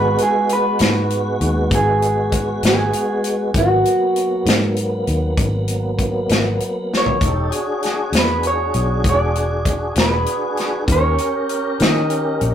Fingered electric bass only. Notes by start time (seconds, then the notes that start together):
Already playing: G#1
0.80 G#2
1.41 D#2
1.71 G#1
2.63 G#1
3.55 G#1
4.46 G#2
5.07 D#2
5.38 G#1
6.30 G#1
7.21 E1
8.12 E2
8.75 B1
9.05 E1
9.96 E1
10.88 D#2
11.80 D#3
12.41 A#1